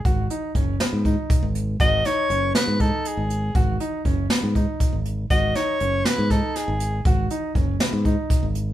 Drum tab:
HH |xxxxxxx|xxxxxxx|xxxxxxx|xxxxxxx|
SD |---o---|-o-o---|---o---|-o-ooo-|
BD |o-o-oo-|o---o--|o-o-oo-|o---o--|

HH |xxxxxxx|
SD |---o---|
BD |o-o-oo-|